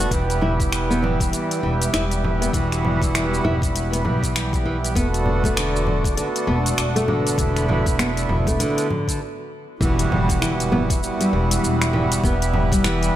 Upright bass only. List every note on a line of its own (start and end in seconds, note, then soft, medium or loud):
0.11 1.29 E1 loud
1.63 1.90 E1 medium
1.93 2.51 E1 medium
2.53 3.41 E1 medium
3.44 4.02 E1 loud
4.05 4.93 B1 medium
4.96 6.14 E1 medium
6.47 6.74 E1 loud
6.77 7.35 E1 medium
7.38 8.26 E1 loud
8.29 8.59 E1 loud
8.60 8.75 A1 medium
9.81 10.99 E1 loud
11.33 11.59 E1 medium
11.63 12.21 E1 medium
12.24 13.11 E1 loud